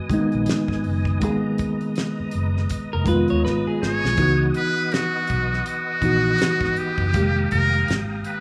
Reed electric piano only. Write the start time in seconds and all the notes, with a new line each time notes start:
Already playing: D#3 G#3 B3 F#4
0.10 D#3 G#3 A#3
0.14 D#4
0.19 B3
1.20 D#3 G#3 A#3
1.24 G#4
1.29 B3
3.04 D#3 G#3 A#3
3.09 F4
3.14 B3
4.16 E3 B3 D#4
4.20 F#4
6.01 E3 B3 D#4
6.05 F#4
7.12 D#3 G3 A#3
7.16 G#3 G4